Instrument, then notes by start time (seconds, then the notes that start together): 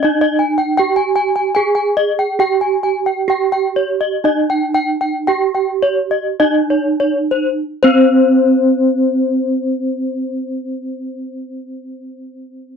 bronze metallophone
0.03 D#4 D#5
0.21 D#5
0.39 G#5
0.58 G5
0.77 G4 G5
0.96 G#5
1.16 G#5
1.36 G#5
1.55 G#4 G#5
1.75 G#5
1.97 D#5
2.19 G5
2.39 G4 G5
2.61 G#5
2.83 G#5
3.06 G5
3.28 G4 G5
3.52 G5
3.76 C#5
4.01 D#5
4.24 D#4 D#5
4.50 G5
4.74 G5
5.01 G5
5.27 G4 G5
5.55 G5
5.83 C#5
6.11 D#5
6.40 D#4 D#5
6.70 C#5
7.00 C#5
7.31 C5
7.83 C4 C5